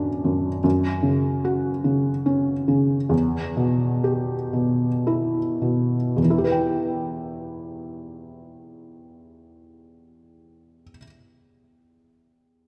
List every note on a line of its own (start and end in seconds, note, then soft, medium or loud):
0.00 0.60 B1 soft
0.00 0.24 F#2 soft
0.00 0.48 D4 soft
0.00 0.67 F#4 soft
0.24 0.62 F#2 soft
0.64 3.08 F#2 soft
1.03 1.68 C#3 soft
1.44 2.10 F#4 soft
1.84 2.51 C#3 soft
2.26 2.94 C#4 soft
2.68 3.12 C#3 soft
3.09 6.13 E2 soft
3.57 4.34 B2 soft
4.04 4.85 G4 soft
4.53 5.39 B2 soft
5.07 5.96 E4 soft
5.62 6.18 B2 soft
6.16 10.83 E2 soft
6.23 10.90 E3 soft
6.30 10.95 E4 soft
6.38 10.99 G4 soft
6.44 11.02 B4 soft
6.52 11.06 G5 soft